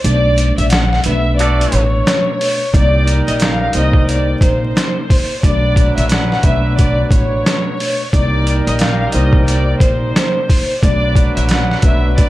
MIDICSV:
0, 0, Header, 1, 6, 480
1, 0, Start_track
1, 0, Tempo, 674157
1, 30, Time_signature, 4, 2, 24, 8
1, 8751, End_track
2, 0, Start_track
2, 0, Title_t, "Violin section"
2, 0, Program_c, 0, 48
2, 22, Note_on_c, 0, 74, 108
2, 385, Note_off_c, 0, 74, 0
2, 412, Note_on_c, 0, 76, 78
2, 500, Note_off_c, 0, 76, 0
2, 505, Note_on_c, 0, 78, 84
2, 635, Note_off_c, 0, 78, 0
2, 651, Note_on_c, 0, 78, 80
2, 739, Note_off_c, 0, 78, 0
2, 752, Note_on_c, 0, 76, 89
2, 967, Note_off_c, 0, 76, 0
2, 981, Note_on_c, 0, 74, 81
2, 1201, Note_off_c, 0, 74, 0
2, 1234, Note_on_c, 0, 73, 79
2, 1923, Note_off_c, 0, 73, 0
2, 1958, Note_on_c, 0, 74, 108
2, 2313, Note_off_c, 0, 74, 0
2, 2329, Note_on_c, 0, 75, 75
2, 2418, Note_off_c, 0, 75, 0
2, 2432, Note_on_c, 0, 77, 87
2, 2559, Note_off_c, 0, 77, 0
2, 2567, Note_on_c, 0, 77, 81
2, 2657, Note_off_c, 0, 77, 0
2, 2679, Note_on_c, 0, 75, 90
2, 2891, Note_off_c, 0, 75, 0
2, 2918, Note_on_c, 0, 74, 80
2, 3130, Note_off_c, 0, 74, 0
2, 3150, Note_on_c, 0, 72, 80
2, 3841, Note_off_c, 0, 72, 0
2, 3871, Note_on_c, 0, 74, 100
2, 4230, Note_off_c, 0, 74, 0
2, 4246, Note_on_c, 0, 76, 78
2, 4336, Note_off_c, 0, 76, 0
2, 4345, Note_on_c, 0, 78, 80
2, 4475, Note_off_c, 0, 78, 0
2, 4493, Note_on_c, 0, 78, 84
2, 4581, Note_off_c, 0, 78, 0
2, 4597, Note_on_c, 0, 76, 82
2, 4809, Note_off_c, 0, 76, 0
2, 4821, Note_on_c, 0, 74, 83
2, 5041, Note_off_c, 0, 74, 0
2, 5075, Note_on_c, 0, 73, 82
2, 5764, Note_off_c, 0, 73, 0
2, 5780, Note_on_c, 0, 74, 110
2, 6144, Note_off_c, 0, 74, 0
2, 6174, Note_on_c, 0, 75, 75
2, 6261, Note_off_c, 0, 75, 0
2, 6267, Note_on_c, 0, 77, 80
2, 6395, Note_off_c, 0, 77, 0
2, 6403, Note_on_c, 0, 77, 81
2, 6495, Note_off_c, 0, 77, 0
2, 6498, Note_on_c, 0, 75, 80
2, 6719, Note_off_c, 0, 75, 0
2, 6749, Note_on_c, 0, 74, 83
2, 6965, Note_off_c, 0, 74, 0
2, 6981, Note_on_c, 0, 72, 84
2, 7677, Note_off_c, 0, 72, 0
2, 7702, Note_on_c, 0, 74, 104
2, 8065, Note_off_c, 0, 74, 0
2, 8093, Note_on_c, 0, 76, 74
2, 8180, Note_off_c, 0, 76, 0
2, 8185, Note_on_c, 0, 78, 83
2, 8315, Note_off_c, 0, 78, 0
2, 8332, Note_on_c, 0, 78, 78
2, 8420, Note_off_c, 0, 78, 0
2, 8433, Note_on_c, 0, 76, 84
2, 8647, Note_off_c, 0, 76, 0
2, 8662, Note_on_c, 0, 74, 79
2, 8751, Note_off_c, 0, 74, 0
2, 8751, End_track
3, 0, Start_track
3, 0, Title_t, "Horn section"
3, 0, Program_c, 1, 61
3, 990, Note_on_c, 1, 66, 102
3, 990, Note_on_c, 1, 74, 111
3, 991, Note_on_c, 1, 57, 108
3, 1315, Note_off_c, 1, 57, 0
3, 1315, Note_off_c, 1, 66, 0
3, 1315, Note_off_c, 1, 74, 0
3, 1942, Note_on_c, 1, 55, 88
3, 1942, Note_on_c, 1, 63, 88
3, 1942, Note_on_c, 1, 70, 91
3, 3597, Note_off_c, 1, 55, 0
3, 3597, Note_off_c, 1, 63, 0
3, 3597, Note_off_c, 1, 70, 0
3, 3867, Note_on_c, 1, 62, 85
3, 3868, Note_on_c, 1, 54, 89
3, 3868, Note_on_c, 1, 71, 96
3, 5520, Note_off_c, 1, 54, 0
3, 5520, Note_off_c, 1, 62, 0
3, 5520, Note_off_c, 1, 71, 0
3, 5787, Note_on_c, 1, 55, 95
3, 5787, Note_on_c, 1, 63, 85
3, 5788, Note_on_c, 1, 70, 100
3, 7440, Note_off_c, 1, 55, 0
3, 7440, Note_off_c, 1, 63, 0
3, 7440, Note_off_c, 1, 70, 0
3, 7705, Note_on_c, 1, 54, 91
3, 7705, Note_on_c, 1, 62, 85
3, 7705, Note_on_c, 1, 71, 96
3, 8751, Note_off_c, 1, 54, 0
3, 8751, Note_off_c, 1, 62, 0
3, 8751, Note_off_c, 1, 71, 0
3, 8751, End_track
4, 0, Start_track
4, 0, Title_t, "Tine electric piano"
4, 0, Program_c, 2, 4
4, 32, Note_on_c, 2, 47, 94
4, 34, Note_on_c, 2, 57, 92
4, 36, Note_on_c, 2, 62, 89
4, 38, Note_on_c, 2, 74, 106
4, 596, Note_off_c, 2, 47, 0
4, 597, Note_off_c, 2, 57, 0
4, 598, Note_off_c, 2, 62, 0
4, 599, Note_off_c, 2, 74, 0
4, 749, Note_on_c, 2, 47, 98
4, 751, Note_on_c, 2, 57, 85
4, 753, Note_on_c, 2, 62, 87
4, 755, Note_on_c, 2, 71, 115
4, 1871, Note_off_c, 2, 47, 0
4, 1872, Note_off_c, 2, 57, 0
4, 1873, Note_off_c, 2, 62, 0
4, 1874, Note_off_c, 2, 71, 0
4, 1947, Note_on_c, 2, 48, 89
4, 1949, Note_on_c, 2, 58, 88
4, 1950, Note_on_c, 2, 63, 82
4, 1952, Note_on_c, 2, 74, 106
4, 2514, Note_off_c, 2, 48, 0
4, 2515, Note_off_c, 2, 58, 0
4, 2515, Note_off_c, 2, 63, 0
4, 2516, Note_off_c, 2, 74, 0
4, 2668, Note_on_c, 2, 48, 88
4, 2670, Note_on_c, 2, 58, 89
4, 2672, Note_on_c, 2, 63, 86
4, 2673, Note_on_c, 2, 72, 108
4, 3791, Note_off_c, 2, 48, 0
4, 3792, Note_off_c, 2, 58, 0
4, 3792, Note_off_c, 2, 63, 0
4, 3793, Note_off_c, 2, 72, 0
4, 3873, Note_on_c, 2, 47, 91
4, 3875, Note_on_c, 2, 57, 87
4, 3876, Note_on_c, 2, 62, 85
4, 3878, Note_on_c, 2, 74, 98
4, 4437, Note_off_c, 2, 47, 0
4, 4438, Note_off_c, 2, 57, 0
4, 4438, Note_off_c, 2, 62, 0
4, 4439, Note_off_c, 2, 74, 0
4, 4590, Note_on_c, 2, 47, 94
4, 4591, Note_on_c, 2, 57, 84
4, 4593, Note_on_c, 2, 62, 85
4, 4595, Note_on_c, 2, 71, 110
4, 5712, Note_off_c, 2, 47, 0
4, 5712, Note_off_c, 2, 57, 0
4, 5713, Note_off_c, 2, 62, 0
4, 5714, Note_off_c, 2, 71, 0
4, 5787, Note_on_c, 2, 48, 89
4, 5788, Note_on_c, 2, 58, 85
4, 5790, Note_on_c, 2, 63, 89
4, 5792, Note_on_c, 2, 74, 104
4, 6354, Note_off_c, 2, 48, 0
4, 6354, Note_off_c, 2, 58, 0
4, 6355, Note_off_c, 2, 63, 0
4, 6356, Note_off_c, 2, 74, 0
4, 6508, Note_on_c, 2, 48, 88
4, 6510, Note_on_c, 2, 58, 90
4, 6511, Note_on_c, 2, 63, 86
4, 6513, Note_on_c, 2, 72, 109
4, 7631, Note_off_c, 2, 48, 0
4, 7632, Note_off_c, 2, 58, 0
4, 7632, Note_off_c, 2, 63, 0
4, 7633, Note_off_c, 2, 72, 0
4, 7714, Note_on_c, 2, 47, 92
4, 7715, Note_on_c, 2, 57, 89
4, 7717, Note_on_c, 2, 62, 82
4, 7719, Note_on_c, 2, 74, 102
4, 8277, Note_off_c, 2, 47, 0
4, 8278, Note_off_c, 2, 57, 0
4, 8278, Note_off_c, 2, 62, 0
4, 8280, Note_off_c, 2, 74, 0
4, 8430, Note_on_c, 2, 47, 93
4, 8432, Note_on_c, 2, 57, 85
4, 8434, Note_on_c, 2, 62, 86
4, 8435, Note_on_c, 2, 71, 112
4, 8751, Note_off_c, 2, 47, 0
4, 8751, Note_off_c, 2, 57, 0
4, 8751, Note_off_c, 2, 62, 0
4, 8751, Note_off_c, 2, 71, 0
4, 8751, End_track
5, 0, Start_track
5, 0, Title_t, "Upright bass"
5, 0, Program_c, 3, 32
5, 31, Note_on_c, 3, 35, 105
5, 359, Note_off_c, 3, 35, 0
5, 413, Note_on_c, 3, 34, 99
5, 703, Note_off_c, 3, 34, 0
5, 751, Note_on_c, 3, 35, 89
5, 1163, Note_off_c, 3, 35, 0
5, 1231, Note_on_c, 3, 33, 96
5, 1437, Note_off_c, 3, 33, 0
5, 1950, Note_on_c, 3, 36, 104
5, 2278, Note_off_c, 3, 36, 0
5, 2332, Note_on_c, 3, 34, 90
5, 2622, Note_off_c, 3, 34, 0
5, 2670, Note_on_c, 3, 36, 85
5, 3082, Note_off_c, 3, 36, 0
5, 3140, Note_on_c, 3, 34, 94
5, 3350, Note_off_c, 3, 34, 0
5, 3870, Note_on_c, 3, 35, 99
5, 4198, Note_off_c, 3, 35, 0
5, 4253, Note_on_c, 3, 34, 93
5, 4542, Note_off_c, 3, 34, 0
5, 4582, Note_on_c, 3, 35, 89
5, 4998, Note_off_c, 3, 35, 0
5, 5061, Note_on_c, 3, 33, 97
5, 5271, Note_off_c, 3, 33, 0
5, 5790, Note_on_c, 3, 36, 104
5, 6118, Note_off_c, 3, 36, 0
5, 6173, Note_on_c, 3, 34, 93
5, 6462, Note_off_c, 3, 34, 0
5, 6511, Note_on_c, 3, 36, 87
5, 6922, Note_off_c, 3, 36, 0
5, 6981, Note_on_c, 3, 34, 93
5, 7191, Note_off_c, 3, 34, 0
5, 7710, Note_on_c, 3, 35, 103
5, 8038, Note_off_c, 3, 35, 0
5, 8094, Note_on_c, 3, 34, 95
5, 8383, Note_off_c, 3, 34, 0
5, 8422, Note_on_c, 3, 35, 86
5, 8751, Note_off_c, 3, 35, 0
5, 8751, End_track
6, 0, Start_track
6, 0, Title_t, "Drums"
6, 32, Note_on_c, 9, 42, 87
6, 104, Note_off_c, 9, 42, 0
6, 269, Note_on_c, 9, 42, 79
6, 340, Note_off_c, 9, 42, 0
6, 416, Note_on_c, 9, 42, 55
6, 487, Note_off_c, 9, 42, 0
6, 499, Note_on_c, 9, 42, 92
6, 516, Note_on_c, 9, 38, 101
6, 570, Note_off_c, 9, 42, 0
6, 588, Note_off_c, 9, 38, 0
6, 661, Note_on_c, 9, 38, 36
6, 732, Note_off_c, 9, 38, 0
6, 738, Note_on_c, 9, 42, 83
6, 809, Note_off_c, 9, 42, 0
6, 991, Note_on_c, 9, 42, 80
6, 1062, Note_off_c, 9, 42, 0
6, 1148, Note_on_c, 9, 42, 57
6, 1219, Note_off_c, 9, 42, 0
6, 1226, Note_on_c, 9, 42, 81
6, 1297, Note_off_c, 9, 42, 0
6, 1475, Note_on_c, 9, 38, 107
6, 1481, Note_on_c, 9, 42, 88
6, 1546, Note_off_c, 9, 38, 0
6, 1553, Note_off_c, 9, 42, 0
6, 1716, Note_on_c, 9, 46, 59
6, 1787, Note_off_c, 9, 46, 0
6, 1949, Note_on_c, 9, 36, 103
6, 1952, Note_on_c, 9, 42, 87
6, 2020, Note_off_c, 9, 36, 0
6, 2024, Note_off_c, 9, 42, 0
6, 2189, Note_on_c, 9, 42, 75
6, 2260, Note_off_c, 9, 42, 0
6, 2336, Note_on_c, 9, 42, 54
6, 2407, Note_off_c, 9, 42, 0
6, 2419, Note_on_c, 9, 42, 90
6, 2436, Note_on_c, 9, 38, 101
6, 2490, Note_off_c, 9, 42, 0
6, 2508, Note_off_c, 9, 38, 0
6, 2657, Note_on_c, 9, 42, 80
6, 2728, Note_off_c, 9, 42, 0
6, 2802, Note_on_c, 9, 36, 95
6, 2873, Note_off_c, 9, 36, 0
6, 2911, Note_on_c, 9, 42, 77
6, 2982, Note_off_c, 9, 42, 0
6, 3140, Note_on_c, 9, 36, 98
6, 3146, Note_on_c, 9, 42, 75
6, 3211, Note_off_c, 9, 36, 0
6, 3218, Note_off_c, 9, 42, 0
6, 3394, Note_on_c, 9, 38, 99
6, 3401, Note_on_c, 9, 42, 85
6, 3466, Note_off_c, 9, 38, 0
6, 3472, Note_off_c, 9, 42, 0
6, 3633, Note_on_c, 9, 36, 93
6, 3635, Note_on_c, 9, 46, 56
6, 3704, Note_off_c, 9, 36, 0
6, 3706, Note_off_c, 9, 46, 0
6, 3869, Note_on_c, 9, 36, 105
6, 3873, Note_on_c, 9, 42, 84
6, 3941, Note_off_c, 9, 36, 0
6, 3944, Note_off_c, 9, 42, 0
6, 4103, Note_on_c, 9, 36, 88
6, 4109, Note_on_c, 9, 42, 77
6, 4174, Note_off_c, 9, 36, 0
6, 4180, Note_off_c, 9, 42, 0
6, 4256, Note_on_c, 9, 42, 56
6, 4327, Note_off_c, 9, 42, 0
6, 4339, Note_on_c, 9, 42, 91
6, 4357, Note_on_c, 9, 38, 99
6, 4410, Note_off_c, 9, 42, 0
6, 4428, Note_off_c, 9, 38, 0
6, 4501, Note_on_c, 9, 38, 36
6, 4572, Note_off_c, 9, 38, 0
6, 4578, Note_on_c, 9, 42, 79
6, 4582, Note_on_c, 9, 36, 94
6, 4649, Note_off_c, 9, 42, 0
6, 4653, Note_off_c, 9, 36, 0
6, 4832, Note_on_c, 9, 42, 80
6, 4833, Note_on_c, 9, 36, 94
6, 4903, Note_off_c, 9, 42, 0
6, 4904, Note_off_c, 9, 36, 0
6, 5060, Note_on_c, 9, 36, 98
6, 5067, Note_on_c, 9, 42, 79
6, 5131, Note_off_c, 9, 36, 0
6, 5138, Note_off_c, 9, 42, 0
6, 5315, Note_on_c, 9, 38, 101
6, 5321, Note_on_c, 9, 42, 81
6, 5386, Note_off_c, 9, 38, 0
6, 5393, Note_off_c, 9, 42, 0
6, 5556, Note_on_c, 9, 46, 54
6, 5627, Note_off_c, 9, 46, 0
6, 5789, Note_on_c, 9, 36, 107
6, 5792, Note_on_c, 9, 42, 86
6, 5860, Note_off_c, 9, 36, 0
6, 5864, Note_off_c, 9, 42, 0
6, 6029, Note_on_c, 9, 42, 79
6, 6100, Note_off_c, 9, 42, 0
6, 6176, Note_on_c, 9, 42, 56
6, 6247, Note_off_c, 9, 42, 0
6, 6258, Note_on_c, 9, 42, 94
6, 6276, Note_on_c, 9, 38, 99
6, 6329, Note_off_c, 9, 42, 0
6, 6347, Note_off_c, 9, 38, 0
6, 6497, Note_on_c, 9, 42, 81
6, 6568, Note_off_c, 9, 42, 0
6, 6642, Note_on_c, 9, 36, 91
6, 6713, Note_off_c, 9, 36, 0
6, 6750, Note_on_c, 9, 42, 80
6, 6822, Note_off_c, 9, 42, 0
6, 6979, Note_on_c, 9, 36, 99
6, 6986, Note_on_c, 9, 42, 78
6, 7051, Note_off_c, 9, 36, 0
6, 7057, Note_off_c, 9, 42, 0
6, 7234, Note_on_c, 9, 38, 100
6, 7241, Note_on_c, 9, 42, 82
6, 7305, Note_off_c, 9, 38, 0
6, 7312, Note_off_c, 9, 42, 0
6, 7472, Note_on_c, 9, 36, 92
6, 7475, Note_on_c, 9, 46, 58
6, 7544, Note_off_c, 9, 36, 0
6, 7546, Note_off_c, 9, 46, 0
6, 7709, Note_on_c, 9, 36, 108
6, 7713, Note_on_c, 9, 42, 84
6, 7780, Note_off_c, 9, 36, 0
6, 7784, Note_off_c, 9, 42, 0
6, 7943, Note_on_c, 9, 36, 91
6, 7949, Note_on_c, 9, 42, 75
6, 8014, Note_off_c, 9, 36, 0
6, 8020, Note_off_c, 9, 42, 0
6, 8096, Note_on_c, 9, 42, 56
6, 8167, Note_off_c, 9, 42, 0
6, 8179, Note_on_c, 9, 42, 94
6, 8196, Note_on_c, 9, 38, 97
6, 8250, Note_off_c, 9, 42, 0
6, 8268, Note_off_c, 9, 38, 0
6, 8340, Note_on_c, 9, 38, 35
6, 8412, Note_off_c, 9, 38, 0
6, 8417, Note_on_c, 9, 42, 77
6, 8422, Note_on_c, 9, 36, 97
6, 8488, Note_off_c, 9, 42, 0
6, 8493, Note_off_c, 9, 36, 0
6, 8671, Note_on_c, 9, 42, 79
6, 8672, Note_on_c, 9, 36, 91
6, 8742, Note_off_c, 9, 42, 0
6, 8744, Note_off_c, 9, 36, 0
6, 8751, End_track
0, 0, End_of_file